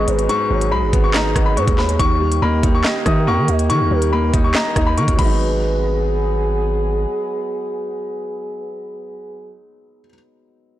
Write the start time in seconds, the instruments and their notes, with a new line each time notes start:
Already playing: felt piano G#2 F#3 G#3 B3 D#4, french horn section F#3 B3 G#4
0.08 808-style bass G#1, soft synth lead B4, closed hi-hat
0.19 closed hi-hat
0.29 felt piano G#2, upright piano C#6, closed hi-hat
0.50 808-style bass G#1, felt piano F#3, soft synth lead C#5
0.61 closed hi-hat
0.71 808-style bass B1, felt piano G#3, upright piano B5
0.82 808-style bass G#1
0.93 808-style bass G#1, felt piano B3, kick, closed hi-hat
1.04 upright piano C#6
1.14 felt piano D#4, soft synth lead D#5, upright piano A#5, snare, clap
1.36 808-style bass G#1, felt piano B3, kick, cross-stick, closed hi-hat
1.46 upright piano B5
1.56 808-style bass G#2, felt piano G#3, soft synth lead B4, upright piano C#6, closed hi-hat
1.68 808-style bass D#2, kick, closed hi-hat
1.78 soft synth lead C#5, upright piano B5, snare
1.89 closed hi-hat
1.99 808-style bass D#2, felt piano D#3, french horn section D#3 A#3 G4, upright piano C#6, kick, closed hi-hat
2.20 felt piano G3
2.32 closed hi-hat
2.42 808-style bass D#2, felt piano A#3, soft synth lead D#5, upright piano B5
2.63 808-style bass D#2, felt piano D#4, kick, closed hi-hat
2.75 upright piano C#6
2.84 felt piano D#5, snare, clap
3.06 808-style bass D#3, felt piano D#4, soft synth lead E5, upright piano D#6, kick, cross-stick, closed hi-hat
3.27 808-style bass E2, felt piano A#3, soft synth lead G5, upright piano C#6
3.38 808-style bass D#3
3.48 808-style bass D#2, soft synth lead D#5, closed hi-hat
3.59 closed hi-hat
3.69 felt piano D#3, 808-style bass D#3, upright piano C#6, closed hi-hat
3.80 808-style bass D#2
3.91 808-style bass D#2, felt piano G3, soft synth lead A#4
4.02 closed hi-hat
4.13 felt piano A#3, upright piano B5
4.34 808-style bass D#2, felt piano D#4, kick, closed hi-hat
4.44 upright piano C#6
4.55 felt piano D#5, upright piano A#5, snare, clap
4.76 808-style bass D#2, felt piano D#4, kick, cross-stick, closed hi-hat
4.87 upright piano B5
4.97 808-style bass D#3, felt piano A#3, upright piano C#6, closed hi-hat
5.08 808-style bass D#2, kick, closed hi-hat
5.13 felt piano F#3 G#3
5.19 808-style bass G#1, french horn section F#3 B3 G#4, felt piano B3, soft synth lead B4, upright piano B5, kick, closed hi-hat, crash
5.25 felt piano D#4